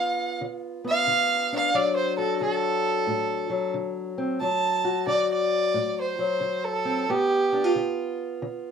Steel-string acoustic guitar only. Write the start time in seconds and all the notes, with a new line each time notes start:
Already playing: D3 B3 F4
0.41 D3
0.84 B3
1.07 D3
1.53 D4
1.74 D2 F#3
2.18 F#4
2.41 D3
3.07 A2
3.50 F#3
3.74 D3
4.18 C4
4.41 D2 F#3
4.85 F#4
5.07 D3
5.74 A2
6.19 F#3
6.40 D3
6.85 C4
7.09 G2 B3
7.53 D4
7.64 F4
7.75 D3
8.42 D3